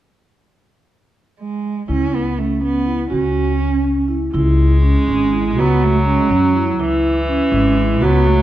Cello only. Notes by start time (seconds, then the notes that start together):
1.40 G#3
1.90 C#4
2.15 B3
2.38 A3
2.63 B3
3.13 C#4
5.10 G#3
5.58 B3
5.83 A3
6.06 G#3
6.30 F#3
7.52 G#3
8.02 B3
8.26 A3